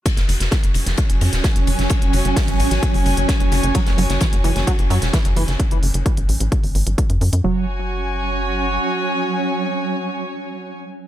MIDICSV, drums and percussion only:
0, 0, Header, 1, 2, 480
1, 0, Start_track
1, 0, Tempo, 461538
1, 60, Time_signature, 4, 2, 24, 8
1, 11518, End_track
2, 0, Start_track
2, 0, Title_t, "Drums"
2, 58, Note_on_c, 9, 51, 90
2, 59, Note_on_c, 9, 36, 113
2, 61, Note_on_c, 9, 42, 77
2, 162, Note_off_c, 9, 51, 0
2, 163, Note_off_c, 9, 36, 0
2, 165, Note_off_c, 9, 42, 0
2, 175, Note_on_c, 9, 38, 58
2, 180, Note_on_c, 9, 42, 55
2, 279, Note_off_c, 9, 38, 0
2, 284, Note_off_c, 9, 42, 0
2, 299, Note_on_c, 9, 51, 73
2, 301, Note_on_c, 9, 46, 100
2, 403, Note_off_c, 9, 51, 0
2, 405, Note_off_c, 9, 46, 0
2, 421, Note_on_c, 9, 42, 50
2, 422, Note_on_c, 9, 38, 57
2, 525, Note_off_c, 9, 42, 0
2, 526, Note_off_c, 9, 38, 0
2, 534, Note_on_c, 9, 38, 119
2, 540, Note_on_c, 9, 36, 123
2, 540, Note_on_c, 9, 42, 79
2, 540, Note_on_c, 9, 51, 90
2, 638, Note_off_c, 9, 38, 0
2, 644, Note_off_c, 9, 36, 0
2, 644, Note_off_c, 9, 42, 0
2, 644, Note_off_c, 9, 51, 0
2, 661, Note_on_c, 9, 42, 54
2, 765, Note_off_c, 9, 42, 0
2, 772, Note_on_c, 9, 51, 68
2, 781, Note_on_c, 9, 46, 108
2, 876, Note_off_c, 9, 51, 0
2, 885, Note_off_c, 9, 46, 0
2, 900, Note_on_c, 9, 42, 53
2, 903, Note_on_c, 9, 38, 55
2, 1004, Note_off_c, 9, 42, 0
2, 1007, Note_off_c, 9, 38, 0
2, 1013, Note_on_c, 9, 51, 79
2, 1020, Note_on_c, 9, 36, 117
2, 1020, Note_on_c, 9, 42, 82
2, 1117, Note_off_c, 9, 51, 0
2, 1124, Note_off_c, 9, 36, 0
2, 1124, Note_off_c, 9, 42, 0
2, 1141, Note_on_c, 9, 42, 56
2, 1245, Note_off_c, 9, 42, 0
2, 1260, Note_on_c, 9, 51, 72
2, 1261, Note_on_c, 9, 46, 99
2, 1364, Note_off_c, 9, 51, 0
2, 1365, Note_off_c, 9, 46, 0
2, 1380, Note_on_c, 9, 38, 56
2, 1381, Note_on_c, 9, 42, 54
2, 1484, Note_off_c, 9, 38, 0
2, 1485, Note_off_c, 9, 42, 0
2, 1496, Note_on_c, 9, 38, 110
2, 1497, Note_on_c, 9, 51, 86
2, 1499, Note_on_c, 9, 36, 122
2, 1501, Note_on_c, 9, 42, 77
2, 1600, Note_off_c, 9, 38, 0
2, 1601, Note_off_c, 9, 51, 0
2, 1603, Note_off_c, 9, 36, 0
2, 1605, Note_off_c, 9, 42, 0
2, 1621, Note_on_c, 9, 42, 49
2, 1725, Note_off_c, 9, 42, 0
2, 1739, Note_on_c, 9, 51, 68
2, 1740, Note_on_c, 9, 46, 102
2, 1843, Note_off_c, 9, 51, 0
2, 1844, Note_off_c, 9, 46, 0
2, 1861, Note_on_c, 9, 42, 53
2, 1864, Note_on_c, 9, 38, 49
2, 1965, Note_off_c, 9, 42, 0
2, 1968, Note_off_c, 9, 38, 0
2, 1971, Note_on_c, 9, 51, 91
2, 1980, Note_on_c, 9, 36, 123
2, 1981, Note_on_c, 9, 42, 81
2, 2075, Note_off_c, 9, 51, 0
2, 2084, Note_off_c, 9, 36, 0
2, 2085, Note_off_c, 9, 42, 0
2, 2101, Note_on_c, 9, 42, 51
2, 2205, Note_off_c, 9, 42, 0
2, 2216, Note_on_c, 9, 51, 68
2, 2221, Note_on_c, 9, 46, 107
2, 2320, Note_off_c, 9, 51, 0
2, 2325, Note_off_c, 9, 46, 0
2, 2341, Note_on_c, 9, 42, 52
2, 2445, Note_off_c, 9, 42, 0
2, 2458, Note_on_c, 9, 38, 113
2, 2460, Note_on_c, 9, 36, 124
2, 2461, Note_on_c, 9, 42, 81
2, 2462, Note_on_c, 9, 46, 75
2, 2562, Note_off_c, 9, 38, 0
2, 2564, Note_off_c, 9, 36, 0
2, 2565, Note_off_c, 9, 42, 0
2, 2566, Note_off_c, 9, 46, 0
2, 2581, Note_on_c, 9, 42, 56
2, 2587, Note_on_c, 9, 51, 40
2, 2685, Note_off_c, 9, 42, 0
2, 2691, Note_off_c, 9, 51, 0
2, 2701, Note_on_c, 9, 46, 115
2, 2703, Note_on_c, 9, 51, 71
2, 2805, Note_off_c, 9, 46, 0
2, 2807, Note_off_c, 9, 51, 0
2, 2816, Note_on_c, 9, 38, 55
2, 2821, Note_on_c, 9, 42, 55
2, 2920, Note_off_c, 9, 38, 0
2, 2925, Note_off_c, 9, 42, 0
2, 2940, Note_on_c, 9, 36, 115
2, 2940, Note_on_c, 9, 51, 84
2, 2941, Note_on_c, 9, 42, 83
2, 3044, Note_off_c, 9, 36, 0
2, 3044, Note_off_c, 9, 51, 0
2, 3045, Note_off_c, 9, 42, 0
2, 3061, Note_on_c, 9, 46, 63
2, 3165, Note_off_c, 9, 46, 0
2, 3180, Note_on_c, 9, 46, 107
2, 3180, Note_on_c, 9, 51, 63
2, 3284, Note_off_c, 9, 46, 0
2, 3284, Note_off_c, 9, 51, 0
2, 3300, Note_on_c, 9, 42, 53
2, 3404, Note_off_c, 9, 42, 0
2, 3418, Note_on_c, 9, 38, 121
2, 3420, Note_on_c, 9, 36, 120
2, 3420, Note_on_c, 9, 42, 82
2, 3427, Note_on_c, 9, 51, 82
2, 3522, Note_off_c, 9, 38, 0
2, 3524, Note_off_c, 9, 36, 0
2, 3524, Note_off_c, 9, 42, 0
2, 3531, Note_off_c, 9, 51, 0
2, 3540, Note_on_c, 9, 42, 53
2, 3644, Note_off_c, 9, 42, 0
2, 3657, Note_on_c, 9, 38, 46
2, 3660, Note_on_c, 9, 46, 109
2, 3662, Note_on_c, 9, 51, 61
2, 3761, Note_off_c, 9, 38, 0
2, 3764, Note_off_c, 9, 46, 0
2, 3766, Note_off_c, 9, 51, 0
2, 3780, Note_on_c, 9, 42, 55
2, 3884, Note_off_c, 9, 42, 0
2, 3896, Note_on_c, 9, 51, 83
2, 3899, Note_on_c, 9, 36, 126
2, 3899, Note_on_c, 9, 42, 82
2, 4000, Note_off_c, 9, 51, 0
2, 4003, Note_off_c, 9, 36, 0
2, 4003, Note_off_c, 9, 42, 0
2, 4015, Note_on_c, 9, 38, 63
2, 4020, Note_on_c, 9, 42, 54
2, 4119, Note_off_c, 9, 38, 0
2, 4124, Note_off_c, 9, 42, 0
2, 4140, Note_on_c, 9, 46, 109
2, 4143, Note_on_c, 9, 51, 66
2, 4244, Note_off_c, 9, 46, 0
2, 4247, Note_off_c, 9, 51, 0
2, 4255, Note_on_c, 9, 38, 51
2, 4261, Note_on_c, 9, 42, 52
2, 4359, Note_off_c, 9, 38, 0
2, 4365, Note_off_c, 9, 42, 0
2, 4373, Note_on_c, 9, 51, 92
2, 4379, Note_on_c, 9, 36, 121
2, 4380, Note_on_c, 9, 38, 102
2, 4381, Note_on_c, 9, 42, 81
2, 4477, Note_off_c, 9, 51, 0
2, 4483, Note_off_c, 9, 36, 0
2, 4484, Note_off_c, 9, 38, 0
2, 4485, Note_off_c, 9, 42, 0
2, 4501, Note_on_c, 9, 42, 55
2, 4605, Note_off_c, 9, 42, 0
2, 4620, Note_on_c, 9, 46, 113
2, 4630, Note_on_c, 9, 51, 67
2, 4724, Note_off_c, 9, 46, 0
2, 4734, Note_off_c, 9, 51, 0
2, 4741, Note_on_c, 9, 42, 55
2, 4744, Note_on_c, 9, 38, 58
2, 4845, Note_off_c, 9, 42, 0
2, 4848, Note_off_c, 9, 38, 0
2, 4860, Note_on_c, 9, 36, 118
2, 4861, Note_on_c, 9, 42, 80
2, 4863, Note_on_c, 9, 51, 86
2, 4964, Note_off_c, 9, 36, 0
2, 4965, Note_off_c, 9, 42, 0
2, 4967, Note_off_c, 9, 51, 0
2, 4981, Note_on_c, 9, 42, 52
2, 5085, Note_off_c, 9, 42, 0
2, 5100, Note_on_c, 9, 46, 112
2, 5102, Note_on_c, 9, 51, 72
2, 5204, Note_off_c, 9, 46, 0
2, 5206, Note_off_c, 9, 51, 0
2, 5220, Note_on_c, 9, 42, 54
2, 5221, Note_on_c, 9, 38, 56
2, 5324, Note_off_c, 9, 42, 0
2, 5325, Note_off_c, 9, 38, 0
2, 5340, Note_on_c, 9, 36, 127
2, 5340, Note_on_c, 9, 42, 83
2, 5344, Note_on_c, 9, 38, 111
2, 5348, Note_on_c, 9, 51, 84
2, 5444, Note_off_c, 9, 36, 0
2, 5444, Note_off_c, 9, 42, 0
2, 5448, Note_off_c, 9, 38, 0
2, 5452, Note_off_c, 9, 51, 0
2, 5460, Note_on_c, 9, 42, 53
2, 5564, Note_off_c, 9, 42, 0
2, 5580, Note_on_c, 9, 46, 111
2, 5588, Note_on_c, 9, 51, 69
2, 5684, Note_off_c, 9, 46, 0
2, 5692, Note_off_c, 9, 51, 0
2, 5695, Note_on_c, 9, 38, 45
2, 5700, Note_on_c, 9, 42, 55
2, 5799, Note_off_c, 9, 38, 0
2, 5804, Note_off_c, 9, 42, 0
2, 5820, Note_on_c, 9, 36, 121
2, 5820, Note_on_c, 9, 42, 76
2, 5924, Note_off_c, 9, 36, 0
2, 5924, Note_off_c, 9, 42, 0
2, 5941, Note_on_c, 9, 42, 49
2, 6045, Note_off_c, 9, 42, 0
2, 6060, Note_on_c, 9, 46, 105
2, 6164, Note_off_c, 9, 46, 0
2, 6181, Note_on_c, 9, 42, 51
2, 6285, Note_off_c, 9, 42, 0
2, 6300, Note_on_c, 9, 36, 127
2, 6300, Note_on_c, 9, 42, 79
2, 6404, Note_off_c, 9, 36, 0
2, 6404, Note_off_c, 9, 42, 0
2, 6421, Note_on_c, 9, 42, 53
2, 6525, Note_off_c, 9, 42, 0
2, 6541, Note_on_c, 9, 46, 115
2, 6645, Note_off_c, 9, 46, 0
2, 6662, Note_on_c, 9, 42, 53
2, 6766, Note_off_c, 9, 42, 0
2, 6780, Note_on_c, 9, 36, 121
2, 6781, Note_on_c, 9, 42, 78
2, 6884, Note_off_c, 9, 36, 0
2, 6885, Note_off_c, 9, 42, 0
2, 6901, Note_on_c, 9, 46, 63
2, 7005, Note_off_c, 9, 46, 0
2, 7021, Note_on_c, 9, 46, 107
2, 7125, Note_off_c, 9, 46, 0
2, 7141, Note_on_c, 9, 42, 51
2, 7245, Note_off_c, 9, 42, 0
2, 7260, Note_on_c, 9, 36, 120
2, 7261, Note_on_c, 9, 42, 78
2, 7364, Note_off_c, 9, 36, 0
2, 7365, Note_off_c, 9, 42, 0
2, 7381, Note_on_c, 9, 42, 53
2, 7485, Note_off_c, 9, 42, 0
2, 7502, Note_on_c, 9, 46, 107
2, 7606, Note_off_c, 9, 46, 0
2, 7622, Note_on_c, 9, 42, 53
2, 7726, Note_off_c, 9, 42, 0
2, 11518, End_track
0, 0, End_of_file